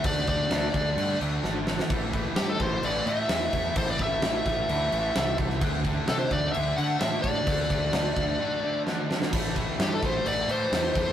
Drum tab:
CC |x-x-x-x-x-x-----|x-x-x-x-x-x-x-x-|x-x-x-x-x-x-x-x-|x-x-x-x-x-x-x-x-|
SD |----o-------o-oo|----o-------o---|----o-o-----o--o|----o-o-----o---|
BD |o-o---o---------|o-o---o-------o-|o-o---o-------o-|o-o---o-------o-|

CC |x-x-x-x---------|x-x-x-x-x-x-x-x-|
SD |----o-------o-oo|----o-o-----o---|
BD |o-o---o---------|o-o---o-------o-|